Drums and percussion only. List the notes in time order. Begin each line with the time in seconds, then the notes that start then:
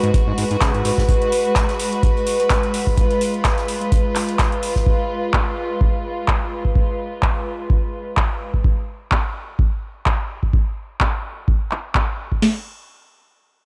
0.04 closed hi-hat
0.14 kick, closed hi-hat
0.38 closed hi-hat, open hi-hat
0.51 closed hi-hat
0.61 kick, snare, clap, closed hi-hat
0.74 closed hi-hat
0.85 closed hi-hat, open hi-hat
0.98 kick, snare
1.09 kick, closed hi-hat
1.22 closed hi-hat
1.32 closed hi-hat, open hi-hat
1.45 closed hi-hat
1.55 kick, snare, clap, closed hi-hat
1.69 snare, closed hi-hat
1.79 closed hi-hat, open hi-hat
1.93 closed hi-hat
2.03 kick, closed hi-hat
2.17 closed hi-hat
2.26 closed hi-hat, open hi-hat
2.40 snare, closed hi-hat
2.50 kick, snare, clap, closed hi-hat
2.63 closed hi-hat
2.74 closed hi-hat, open hi-hat
2.87 kick
2.97 kick, closed hi-hat
3.11 closed hi-hat
3.21 closed hi-hat, open hi-hat
3.44 kick, snare, clap, closed hi-hat
3.58 snare, closed hi-hat
3.68 closed hi-hat, open hi-hat
3.81 closed hi-hat
3.92 kick, closed hi-hat
4.15 clap, closed hi-hat, open hi-hat
4.29 closed hi-hat
4.39 kick, snare, clap, closed hi-hat
4.52 closed hi-hat
4.62 closed hi-hat, open hi-hat
4.76 kick, snare
4.86 kick
5.34 kick, clap
5.81 kick
6.28 kick, clap
6.65 kick
6.76 kick
7.23 kick, clap
7.70 kick
8.17 kick, clap
8.54 kick
8.64 kick
9.12 kick, clap
9.59 kick
10.06 kick, clap
10.43 kick
10.53 kick
11.01 kick, clap
11.48 kick
11.71 clap
11.95 kick, clap
12.32 kick
12.42 snare, crash